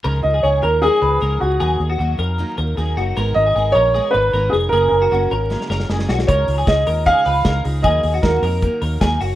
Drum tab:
HH |----------------|----------------|----------------|----------------|
SD |----------------|----------------|----------------|--------oooooooo|
BD |----------------|----------------|----------------|----------------|

HH |x-o-x-o-x-o-x-o-|x-o-x-o-x-o-x-o-|
SD |----o-------o---|----o-------o---|
BD |o---o---o---o---|o---o---o---o---|